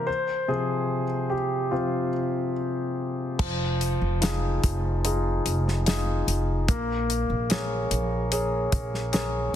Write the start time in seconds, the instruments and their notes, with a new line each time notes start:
0.07 grand piano C5
0.48 grand piano C3 F3 C4 G#4
1.30 grand piano G4
1.71 grand piano C3 F3 C4 F4
3.39 upright bass F1, grand piano F3, kick, crash
3.81 closed hi-hat
4.02 upright bass F1
4.21 grand piano D#4 F4 G#4, snare, closed hi-hat
4.64 upright bass F1, kick, closed hi-hat
5.04 grand piano D#4 F4 G#4, closed hi-hat
5.45 upright bass F1, closed hi-hat
5.68 snare
5.86 grand piano D#4 F4 G#4, snare, closed hi-hat
6.27 upright bass F1, closed hi-hat
6.68 upright bass A#1, grand piano A#3, kick, closed hi-hat
7.10 closed hi-hat
7.30 upright bass A#1
7.50 grand piano G#4 A#4 C#5, snare, closed hi-hat
7.91 upright bass A#1, closed hi-hat
8.32 grand piano G#4 A#4 C#5, closed hi-hat
8.72 upright bass A#1, kick, closed hi-hat
8.94 snare
9.12 grand piano G#4 A#4 C#5, snare, closed hi-hat